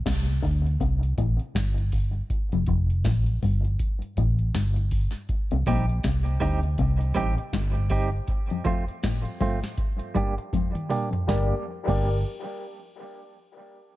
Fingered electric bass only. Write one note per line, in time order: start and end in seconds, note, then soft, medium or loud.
0.07 0.39 C2 medium
0.44 0.76 D2 medium
0.81 1.13 C2 medium
1.19 1.38 A1 medium
1.56 2.21 G1 medium
2.53 2.66 F1 loud
2.68 3.06 F1 medium
3.06 3.38 A1 medium
3.43 3.75 G1 medium
4.17 4.50 A1 medium
4.55 5.06 G1 medium
5.53 5.65 C2 medium
5.67 5.99 A#1 loud
6.05 6.37 C2 medium
6.42 6.75 D2 medium
6.79 7.11 C2 medium
7.17 7.36 A1 medium
7.54 8.19 G1 loud
11.29 11.52 G1 loud
11.89 12.23 G1 medium